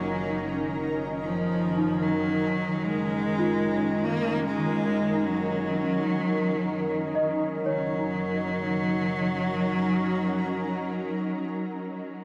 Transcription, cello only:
0.00 0.80 F#3 medium
1.21 2.04 F3 medium
2.02 2.85 F#3 medium
2.84 4.07 G#3 medium
4.05 4.44 A#3 medium
4.45 5.27 G#3 medium
5.26 7.27 F#3 medium
7.67 11.56 F#3 medium

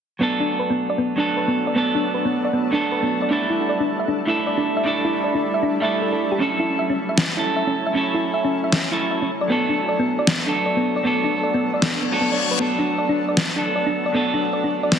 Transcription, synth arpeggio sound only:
0.21 0.25 B3 loud
0.40 0.47 D4 loud
0.60 0.62 B4 loud
0.70 0.74 B3 medium
0.90 0.93 D5 loud
0.98 1.03 B3 loud
1.18 1.25 D4 medium
1.37 1.40 B4 medium
1.48 1.51 B3 medium
1.67 1.71 D5 loud
1.76 1.80 B3 loud
1.95 2.02 D4 loud
2.14 2.17 B4 loud
2.25 2.29 B3 loud
2.45 2.48 D5 medium
2.53 2.58 B3 loud
2.73 2.79 D4 loud
2.92 2.95 B4 loud
3.03 3.06 B3 medium
3.22 3.26 D5 loud
3.31 3.35 D4 loud
3.50 3.57 E4 medium
3.69 3.72 D5 loud
3.80 3.84 D4 loud
4.00 4.03 E5 loud
4.08 4.13 D4 loud
4.27 4.34 E4 medium
4.47 4.49 D5 loud
4.57 4.61 D4 medium
4.77 4.80 E5 loud
4.85 4.90 D4 loud
5.05 5.12 E4 loud
5.24 5.27 D5 loud
5.35 5.38 D4 loud
5.54 5.58 E5 loud
5.63 5.67 D4 loud
5.82 5.87 E5 loud
6.01 6.06 A4 medium
6.12 6.16 A4 medium
6.32 6.37 G4 loud
6.40 6.45 C#4 loud
6.60 6.66 E4 loud
6.79 6.84 E5 medium
6.90 6.93 C#4 loud
7.09 7.13 E5 loud
7.18 7.22 C#4 loud
7.37 7.44 E4 loud
7.56 7.61 E5 medium
7.67 7.71 C#4 loud
7.87 7.90 E5 loud
7.95 8.00 C#4 loud
8.14 8.21 E4 loud
8.34 8.38 E5 medium
8.45 8.48 C#4 loud
8.64 8.68 E5 medium
8.73 8.77 C#4 medium
8.92 8.99 E4 medium
9.11 9.16 E5 medium
9.22 9.26 C#4 medium
9.41 9.45 D5 loud
9.50 9.55 B3 loud
9.69 9.76 D4 loud
9.89 9.93 D5 loud
9.99 10.03 B3 loud
10.19 10.22 D5 loud
10.27 10.32 B3 loud
10.47 10.54 D4 loud
10.66 10.71 D5 medium
10.77 10.80 B3 medium
10.96 11.00 D5 loud
11.05 11.09 B3 loud
11.24 11.31 D4 loud
11.43 11.48 D5 medium
11.54 11.58 B3 loud
11.74 11.77 D5 medium
11.82 11.87 B3 loud
12.02 12.04 B3 medium
12.21 12.26 B3 medium
12.32 12.37 D5 medium
12.51 12.55 B4 loud
12.60 12.64 B3 loud
12.79 12.86 D4 loud
12.98 13.03 D5 loud
13.09 13.13 D4 loud
13.28 13.32 D5 medium
13.37 13.42 B3 medium
13.56 13.63 D4 loud
13.76 13.80 D5 loud
13.87 13.90 D4 medium
14.06 14.10 D5 loud
14.14 14.19 B3 loud
14.34 14.41 D4 loud
14.53 14.58 D5 loud
14.64 14.68 D4 medium
14.83 14.87 D5 loud
14.92 14.97 B3 loud

